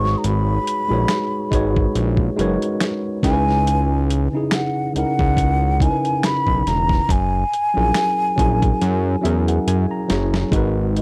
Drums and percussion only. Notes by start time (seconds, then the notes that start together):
0.05 snare
0.24 closed hi-hat
0.67 closed hi-hat
1.08 finger snap, snare, closed hi-hat
1.52 kick, closed hi-hat
1.76 kick
1.95 closed hi-hat
2.17 kick
2.39 closed hi-hat
2.62 closed hi-hat
2.80 finger snap, snare, closed hi-hat
3.23 kick, snare, closed hi-hat
3.48 snare
3.67 closed hi-hat
4.10 closed hi-hat
4.51 finger snap, snare, closed hi-hat
4.96 closed hi-hat
5.19 kick
5.37 kick, closed hi-hat
5.80 kick, closed hi-hat
6.05 closed hi-hat
6.23 finger snap, snare, closed hi-hat
6.47 kick
6.67 snare, closed hi-hat
6.89 kick, snare
7.09 kick, closed hi-hat
7.54 closed hi-hat
7.94 finger snap, snare, closed hi-hat
8.38 kick, closed hi-hat
8.62 kick, closed hi-hat
8.82 closed hi-hat
9.25 closed hi-hat
9.48 closed hi-hat
9.68 closed hi-hat
10.10 snare, closed hi-hat
10.34 snare
10.52 kick, closed hi-hat
10.96 closed hi-hat